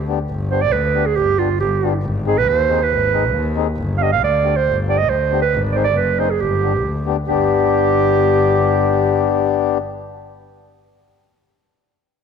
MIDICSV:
0, 0, Header, 1, 4, 480
1, 0, Start_track
1, 0, Tempo, 435730
1, 323, Time_signature, 2, 2, 24, 8
1, 13482, End_track
2, 0, Start_track
2, 0, Title_t, "Clarinet"
2, 0, Program_c, 0, 71
2, 560, Note_on_c, 0, 72, 87
2, 675, Note_on_c, 0, 74, 113
2, 692, Note_off_c, 0, 72, 0
2, 793, Note_on_c, 0, 71, 88
2, 810, Note_off_c, 0, 74, 0
2, 1165, Note_on_c, 0, 68, 92
2, 1182, Note_off_c, 0, 71, 0
2, 1277, Note_on_c, 0, 67, 113
2, 1294, Note_off_c, 0, 68, 0
2, 1526, Note_on_c, 0, 65, 97
2, 1543, Note_off_c, 0, 67, 0
2, 1760, Note_off_c, 0, 65, 0
2, 1767, Note_on_c, 0, 67, 79
2, 2211, Note_off_c, 0, 67, 0
2, 2503, Note_on_c, 0, 68, 97
2, 2621, Note_on_c, 0, 71, 109
2, 2637, Note_off_c, 0, 68, 0
2, 2733, Note_on_c, 0, 72, 107
2, 2749, Note_off_c, 0, 71, 0
2, 3115, Note_on_c, 0, 71, 98
2, 3131, Note_off_c, 0, 72, 0
2, 3938, Note_off_c, 0, 71, 0
2, 4382, Note_on_c, 0, 77, 82
2, 4433, Note_on_c, 0, 75, 85
2, 4450, Note_off_c, 0, 77, 0
2, 4533, Note_off_c, 0, 75, 0
2, 4540, Note_on_c, 0, 77, 106
2, 4643, Note_off_c, 0, 77, 0
2, 4668, Note_on_c, 0, 74, 99
2, 5024, Note_on_c, 0, 72, 103
2, 5041, Note_off_c, 0, 74, 0
2, 5253, Note_off_c, 0, 72, 0
2, 5391, Note_on_c, 0, 74, 90
2, 5488, Note_on_c, 0, 75, 105
2, 5505, Note_off_c, 0, 74, 0
2, 5612, Note_on_c, 0, 72, 93
2, 5628, Note_off_c, 0, 75, 0
2, 5962, Note_off_c, 0, 72, 0
2, 5969, Note_on_c, 0, 71, 100
2, 6189, Note_off_c, 0, 71, 0
2, 6303, Note_on_c, 0, 74, 67
2, 6332, Note_on_c, 0, 72, 79
2, 6348, Note_off_c, 0, 74, 0
2, 6428, Note_off_c, 0, 72, 0
2, 6435, Note_on_c, 0, 74, 99
2, 6561, Note_on_c, 0, 71, 89
2, 6577, Note_off_c, 0, 74, 0
2, 6820, Note_on_c, 0, 72, 85
2, 6836, Note_off_c, 0, 71, 0
2, 6939, Note_on_c, 0, 68, 85
2, 6955, Note_off_c, 0, 72, 0
2, 7060, Note_on_c, 0, 67, 103
2, 7077, Note_off_c, 0, 68, 0
2, 7772, Note_off_c, 0, 67, 0
2, 8016, Note_on_c, 0, 67, 121
2, 10769, Note_off_c, 0, 67, 0
2, 13482, End_track
3, 0, Start_track
3, 0, Title_t, "Accordion"
3, 0, Program_c, 1, 21
3, 84, Note_on_c, 1, 59, 81
3, 91, Note_on_c, 1, 62, 71
3, 102, Note_on_c, 1, 67, 99
3, 203, Note_off_c, 1, 59, 0
3, 207, Note_off_c, 1, 62, 0
3, 212, Note_off_c, 1, 67, 0
3, 550, Note_on_c, 1, 59, 67
3, 563, Note_on_c, 1, 62, 70
3, 571, Note_on_c, 1, 67, 76
3, 676, Note_off_c, 1, 59, 0
3, 683, Note_off_c, 1, 62, 0
3, 687, Note_off_c, 1, 67, 0
3, 1031, Note_on_c, 1, 59, 79
3, 1038, Note_on_c, 1, 62, 72
3, 1048, Note_on_c, 1, 67, 74
3, 1157, Note_off_c, 1, 59, 0
3, 1160, Note_off_c, 1, 62, 0
3, 1165, Note_off_c, 1, 67, 0
3, 1505, Note_on_c, 1, 59, 70
3, 1517, Note_on_c, 1, 62, 73
3, 1529, Note_on_c, 1, 67, 71
3, 1634, Note_off_c, 1, 59, 0
3, 1640, Note_off_c, 1, 62, 0
3, 1646, Note_off_c, 1, 67, 0
3, 2002, Note_on_c, 1, 59, 69
3, 2020, Note_on_c, 1, 62, 65
3, 2026, Note_on_c, 1, 67, 88
3, 2122, Note_off_c, 1, 59, 0
3, 2131, Note_off_c, 1, 62, 0
3, 2134, Note_off_c, 1, 67, 0
3, 2483, Note_on_c, 1, 60, 70
3, 2500, Note_on_c, 1, 63, 71
3, 2503, Note_on_c, 1, 68, 92
3, 2603, Note_off_c, 1, 60, 0
3, 2611, Note_off_c, 1, 63, 0
3, 2612, Note_off_c, 1, 68, 0
3, 2966, Note_on_c, 1, 60, 74
3, 2969, Note_on_c, 1, 63, 67
3, 2986, Note_on_c, 1, 68, 92
3, 3083, Note_off_c, 1, 60, 0
3, 3085, Note_off_c, 1, 63, 0
3, 3094, Note_off_c, 1, 68, 0
3, 3439, Note_on_c, 1, 60, 72
3, 3454, Note_on_c, 1, 63, 65
3, 3461, Note_on_c, 1, 68, 88
3, 3560, Note_off_c, 1, 60, 0
3, 3568, Note_off_c, 1, 63, 0
3, 3571, Note_off_c, 1, 68, 0
3, 3913, Note_on_c, 1, 60, 89
3, 3925, Note_on_c, 1, 63, 83
3, 3941, Note_on_c, 1, 68, 100
3, 4037, Note_off_c, 1, 60, 0
3, 4043, Note_off_c, 1, 63, 0
3, 4051, Note_off_c, 1, 68, 0
3, 4398, Note_on_c, 1, 59, 72
3, 4406, Note_on_c, 1, 62, 56
3, 4421, Note_on_c, 1, 67, 78
3, 4519, Note_off_c, 1, 59, 0
3, 4524, Note_off_c, 1, 62, 0
3, 4531, Note_off_c, 1, 67, 0
3, 4872, Note_on_c, 1, 59, 75
3, 4887, Note_on_c, 1, 62, 68
3, 4898, Note_on_c, 1, 67, 76
3, 4997, Note_off_c, 1, 59, 0
3, 5004, Note_off_c, 1, 62, 0
3, 5010, Note_off_c, 1, 67, 0
3, 5361, Note_on_c, 1, 59, 64
3, 5369, Note_on_c, 1, 62, 63
3, 5381, Note_on_c, 1, 67, 79
3, 5481, Note_off_c, 1, 59, 0
3, 5485, Note_off_c, 1, 62, 0
3, 5491, Note_off_c, 1, 67, 0
3, 5847, Note_on_c, 1, 59, 79
3, 5857, Note_on_c, 1, 62, 66
3, 5873, Note_on_c, 1, 67, 86
3, 5965, Note_off_c, 1, 59, 0
3, 5970, Note_off_c, 1, 62, 0
3, 5977, Note_off_c, 1, 67, 0
3, 6330, Note_on_c, 1, 60, 77
3, 6340, Note_on_c, 1, 63, 73
3, 6351, Note_on_c, 1, 68, 78
3, 6446, Note_off_c, 1, 60, 0
3, 6451, Note_off_c, 1, 63, 0
3, 6456, Note_off_c, 1, 68, 0
3, 6804, Note_on_c, 1, 60, 73
3, 6816, Note_on_c, 1, 63, 77
3, 6821, Note_on_c, 1, 68, 85
3, 6923, Note_off_c, 1, 60, 0
3, 6930, Note_off_c, 1, 63, 0
3, 6932, Note_off_c, 1, 68, 0
3, 7294, Note_on_c, 1, 59, 80
3, 7311, Note_on_c, 1, 62, 71
3, 7321, Note_on_c, 1, 67, 78
3, 7409, Note_off_c, 1, 59, 0
3, 7417, Note_off_c, 1, 62, 0
3, 7422, Note_off_c, 1, 67, 0
3, 7769, Note_on_c, 1, 59, 80
3, 7786, Note_on_c, 1, 62, 84
3, 7787, Note_on_c, 1, 67, 98
3, 7886, Note_off_c, 1, 59, 0
3, 7895, Note_off_c, 1, 62, 0
3, 7895, Note_off_c, 1, 67, 0
3, 8025, Note_on_c, 1, 59, 102
3, 8026, Note_on_c, 1, 62, 93
3, 8026, Note_on_c, 1, 67, 106
3, 10773, Note_off_c, 1, 59, 0
3, 10773, Note_off_c, 1, 62, 0
3, 10774, Note_off_c, 1, 67, 0
3, 13482, End_track
4, 0, Start_track
4, 0, Title_t, "Double bass"
4, 0, Program_c, 2, 43
4, 0, Note_on_c, 2, 38, 85
4, 132, Note_off_c, 2, 38, 0
4, 319, Note_on_c, 2, 31, 95
4, 800, Note_on_c, 2, 38, 103
4, 817, Note_off_c, 2, 31, 0
4, 1089, Note_off_c, 2, 38, 0
4, 1281, Note_on_c, 2, 31, 93
4, 1570, Note_off_c, 2, 31, 0
4, 1758, Note_on_c, 2, 31, 102
4, 2047, Note_off_c, 2, 31, 0
4, 2229, Note_on_c, 2, 32, 97
4, 2716, Note_on_c, 2, 39, 112
4, 2732, Note_off_c, 2, 32, 0
4, 3005, Note_off_c, 2, 39, 0
4, 3204, Note_on_c, 2, 32, 94
4, 3665, Note_on_c, 2, 39, 106
4, 3682, Note_off_c, 2, 32, 0
4, 3958, Note_off_c, 2, 39, 0
4, 4153, Note_on_c, 2, 31, 101
4, 4645, Note_on_c, 2, 38, 105
4, 4662, Note_off_c, 2, 31, 0
4, 4932, Note_off_c, 2, 38, 0
4, 5134, Note_on_c, 2, 31, 95
4, 5605, Note_on_c, 2, 38, 95
4, 5621, Note_off_c, 2, 31, 0
4, 5892, Note_off_c, 2, 38, 0
4, 6088, Note_on_c, 2, 32, 110
4, 6559, Note_on_c, 2, 30, 99
4, 6576, Note_off_c, 2, 32, 0
4, 6848, Note_off_c, 2, 30, 0
4, 7042, Note_on_c, 2, 31, 99
4, 7524, Note_on_c, 2, 38, 90
4, 7541, Note_off_c, 2, 31, 0
4, 7812, Note_off_c, 2, 38, 0
4, 8010, Note_on_c, 2, 31, 97
4, 10766, Note_off_c, 2, 31, 0
4, 13482, End_track
0, 0, End_of_file